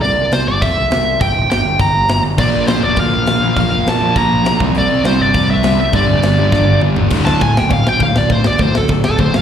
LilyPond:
<<
  \new Staff \with { instrumentName = "Lead electric guitar" } { \time 4/4 \key d \minor \tempo 4 = 203 d''4 c''8 d''8 e''2 | g''4 g''4 bes''4. r8 | d''4 c''8 d''8 f''2 | f''4 a''4 bes''4. r8 |
d''4 c''8 d''4 e''4 e''8 | d''2. r4 | r8 a''8 gis''8 g''8 f''8 g''8 f''8 d''8 | c''8 d''8 c''8 a'8 r8 a'8 c''8 f''8 | }
  \new Staff \with { instrumentName = "Distorted electric guitar" } { \clef bass \time 4/4 \key d \minor r1 | r1 | <bes, f bes>2.~ <bes, f bes>8 <bes, f bes>8 | <bes, f bes>2.~ <bes, f bes>8 <c g c'>8~ |
<c g c'>2. <c g c'>8 r8 | <g, d g>2.~ <g, d g>8 <g, d g>8 | <d, a, d>4 <d, a,>8 r8 <d, a,>8 r8 <d, a,>8 r8 | <d, a,>8 r8 <d, a,>8 r8 <d, a,>8 r8 <d, a,>8 r8 | }
  \new Staff \with { instrumentName = "Distorted electric guitar" } { \clef bass \time 4/4 \key d \minor r1 | r1 | <bes, f bes>4. <bes, f bes>2~ <bes, f bes>8 | <bes, f bes>4. <bes, f bes>2 <c g c'>8~ |
<c g c'>4 <c g c'>2~ <c g c'>8 r8 | <g, d g>4. <g, d g>2~ <g, d g>8 | <d, a, d>4 <d, a,>8 r8 <d, a,>8 r8 <d, a,>8 r8 | <d, a,>8 r8 <d, a,>8 r8 <d, a,>8 r8 <d, a,>8 r8 | }
  \new Staff \with { instrumentName = "Picked electric bass" } { \clef bass \time 4/4 \key d \minor c,8 c,8 c,8 g,,8 f,8 c,8 c,4 | g,,8 d,,8 g,,8 g,,8 g,,8 g,,8 g,,8 g,,8 | bes,,8 bes,,8 bes,,8 f,,8 d,8 bes,,8 bes,,4 | bes,,8 f,,8 bes,,8 bes,,8 bes,,8 bes,,8 b,,8 c,8 |
c,8 c,8 c,8 g,,8 f,8 c,8 c,4 | g,,8 d,,8 g,,8 g,,8 g,,8 g,,8 g,,8 g,,8 | d,,8 d,,8 d,,8 d,8 d,,8 d,,8 d,,8 d,,8 | d,,8 d,,8 d,,8 d,8 d,,8 d,,8 d,,8 d,,8 | }
  \new DrumStaff \with { instrumentName = "Drums" } \drummode { \time 4/4 hho4 <hho sn>4 <hho bd>4 <hho sn>4 | <hho bd>4 <hho sn>4 <hho bd>4 <hho sn>4 | <cymc bd>4 <hho sn>4 <hho bd>4 <hho sn>4 | <hho bd>4 <hho sn>4 <hho bd>4 <hho sn>8 bd8 |
hho4 <hho sn>4 <hho bd>4 <hho sn>4 | <hho bd>4 <hho sn>4 <bd sn>4 toml8 tomfh8 | <cymc bd>8 sn8 <cymc bd>8 sn8 <cymc bd>8 sn8 <cymc bd>8 sn8 | <cymc bd>8 sn8 <cymc bd>8 sn8 <cymc bd>8 sn8 <cymc bd>8 sn8 | }
>>